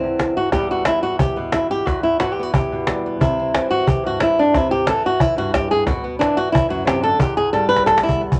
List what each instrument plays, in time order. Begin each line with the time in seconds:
Already playing: nylon-string guitar E3 C4
0.04 nylon-string guitar E2
0.19 cajon slap
0.37 nylon-string guitar F#4
0.52 nylon-string guitar E2 E3 G3 B3 G4, cajon bass, cajon slap
0.69 nylon-string guitar F#4, cajon slap
0.85 nylon-string guitar E3 E4, cajon slap
1.03 nylon-string guitar F#4
1.19 nylon-string guitar G4, cajon bass
1.36 nylon-string guitar B2 B3
1.52 nylon-string guitar E4, cajon slap
1.71 nylon-string guitar G4
1.86 nylon-string guitar E2 F#4, cajon bass, cajon slap
2.03 nylon-string guitar E4, cajon slap
2.20 nylon-string guitar E3 F#4, cajon slap
2.33 nylon-string guitar G4
2.39 nylon-string guitar B3 F#4
2.54 nylon-string guitar G4, cajon bass
2.72 nylon-string guitar B2
2.87 nylon-string guitar G3, cajon slap
3.06 nylon-string guitar B3
3.20 nylon-string guitar C3 E4, cajon bass
3.40 nylon-string guitar C4
3.55 nylon-string guitar E3 C4, cajon slap
3.71 nylon-string guitar F#4
3.88 nylon-string guitar G4, cajon bass
4.04 nylon-string guitar G2 F#4
4.20 nylon-string guitar E4, cajon slap
4.39 nylon-string guitar D4
4.54 nylon-string guitar C3 E4, cajon bass, cajon slap
4.71 nylon-string guitar G4
4.86 nylon-string guitar E3 A4, cajon slap
5.06 nylon-string guitar F#4
5.20 nylon-string guitar E4, cajon bass
5.37 nylon-string guitar G2 F#4
5.54 nylon-string guitar G4, cajon bass, cajon slap
5.71 nylon-string guitar G#4
5.86 nylon-string guitar B2 F#4, cajon bass, cajon slap
6.04 nylon-string guitar B3, cajon slap
6.19 nylon-string guitar E3 D4, cajon slap
6.37 nylon-string guitar F#4, cajon slap
6.52 nylon-string guitar E4, cajon bass
6.69 nylon-string guitar F#2 F#4
6.85 nylon-string guitar C3 G4, cajon slap
7.01 nylon-string guitar D3 A4
7.19 nylon-string guitar E2 G4, cajon bass
7.37 nylon-string guitar G#4, cajon slap
7.53 nylon-string guitar G3 A4, cajon slap
7.69 nylon-string guitar B4
7.76 cajon slap
7.86 nylon-string guitar A4, cajon slap
7.98 cajon slap
8.03 nylon-string guitar E2 E4
8.09 cajon bass
8.21 nylon-string guitar B3
8.32 cajon bass